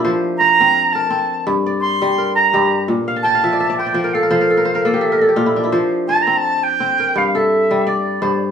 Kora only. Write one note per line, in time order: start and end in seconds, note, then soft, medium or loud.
0.00 1.11 A#3 medium
0.00 1.57 D4 medium
0.00 1.54 E4 medium
0.00 1.02 G4 medium
0.00 0.53 A#4 medium
0.04 1.51 F3 medium
0.04 0.40 C5 medium
0.40 1.59 C5 medium
0.60 1.10 C4 medium
0.95 2.18 A#4 medium
1.10 2.90 C4 medium
1.47 2.53 G2 medium
1.66 2.77 D5 medium
2.02 2.93 G3 medium
2.18 3.22 A#4 medium
2.53 2.93 G2 medium
2.53 3.95 G4 medium
2.88 5.22 A#2 medium
3.08 3.34 F5 medium
3.16 4.03 A5 medium
3.25 4.18 G5 medium
3.35 3.66 F5 medium
3.44 3.93 F3 medium
3.44 3.60 E5 medium
3.53 3.69 D5 medium
3.60 4.00 E5 medium
3.70 3.86 D5 medium
3.79 3.94 C5 medium
3.86 4.97 D5 medium
3.94 4.29 F3 medium
3.94 4.30 C5 medium
4.04 4.22 A#4 medium
4.15 4.47 A4 medium
4.23 4.41 A#4 medium
4.31 5.71 F3 medium
4.31 4.65 C5 medium
4.41 4.57 A#4 medium
4.50 4.81 A4 medium
4.57 4.75 A#4 medium
4.65 5.72 C5 medium
4.75 5.07 A#4 medium
4.85 5.27 A#3 medium
4.85 5.01 A4 medium
4.94 5.28 G4 medium
5.01 5.21 A4 medium
5.12 6.39 A#4 medium
5.21 5.42 A4 medium
5.29 6.70 G4 medium
5.36 5.77 A#2 medium
5.36 5.70 F4 medium
5.46 5.63 E4 medium
5.56 7.24 D4 medium
5.64 7.20 E4 medium
5.72 7.19 F3 medium
5.72 6.08 C5 medium
6.09 7.27 C5 medium
6.27 6.80 C4 medium
6.80 8.51 C4 medium
7.00 7.41 A#4 medium
7.16 8.21 G2 medium
7.35 8.51 A4 medium
7.71 8.51 G3 medium
7.87 8.51 D5 medium
8.22 8.51 G2 medium
8.22 8.51 C5 medium